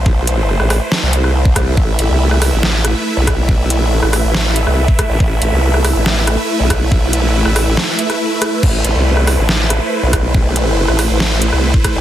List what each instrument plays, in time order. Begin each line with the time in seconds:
Already playing: wobble bass B1, supersaw synth A3 E4 B4 C5
0.06 kick
0.27 closed hi-hat
0.60 wobble bass A1, cross-stick
0.70 cross-stick, open hi-hat
0.92 snare
1.03 wobble bass C2
1.13 closed hi-hat
1.24 cross-stick
1.45 kick
1.56 kick, cross-stick, closed hi-hat
1.77 wobble bass A1, supersaw synth E5, kick
1.99 wobble bass A1, closed hi-hat
2.10 wobble bass C2
2.31 cross-stick
2.42 cross-stick, open hi-hat
2.53 wobble bass A1
2.63 snare
2.85 cross-stick, closed hi-hat
3.17 wobble bass B1
3.27 kick, cross-stick, closed hi-hat
3.49 kick
3.70 closed hi-hat
3.76 wobble bass A#1
4.03 wobble bass A1, cross-stick
4.13 cross-stick, open hi-hat
4.24 wobble bass A1
4.35 snare
4.56 closed hi-hat
4.67 wobble bass C2, cross-stick
4.88 kick
4.99 kick, cross-stick, closed hi-hat
5.10 wobble bass A1
5.20 wobble bass A1, kick
5.42 wobble bass A1, closed hi-hat
5.53 wobble bass C2
5.74 cross-stick
5.85 cross-stick, open hi-hat
5.95 wobble bass A1
6.06 snare
6.27 cross-stick, closed hi-hat
6.60 wobble bass B1
6.70 kick, cross-stick, closed hi-hat
6.92 kick
7.13 closed hi-hat
7.19 wobble bass A#1
7.45 wobble bass A1, cross-stick
7.56 cross-stick, open hi-hat
7.67 wobble bass A1
7.77 snare
7.99 closed hi-hat
8.10 cross-stick, closed hi-hat
8.42 cross-stick, closed hi-hat
8.63 wobble bass A1, supersaw synth C5, kick, crash
8.85 wobble bass A1, closed hi-hat
8.95 wobble bass C2
9.17 cross-stick
9.27 cross-stick, open hi-hat
9.38 wobble bass A1
9.49 snare
9.70 cross-stick, closed hi-hat
10.03 wobble bass B1
10.13 kick, cross-stick, closed hi-hat
10.35 kick
10.56 closed hi-hat
10.88 wobble bass A1, cross-stick
10.99 cross-stick, open hi-hat
11.10 wobble bass A1
11.20 snare
11.42 closed hi-hat
11.53 wobble bass C2, cross-stick
11.74 kick
11.84 kick, cross-stick, closed hi-hat
11.95 wobble bass A1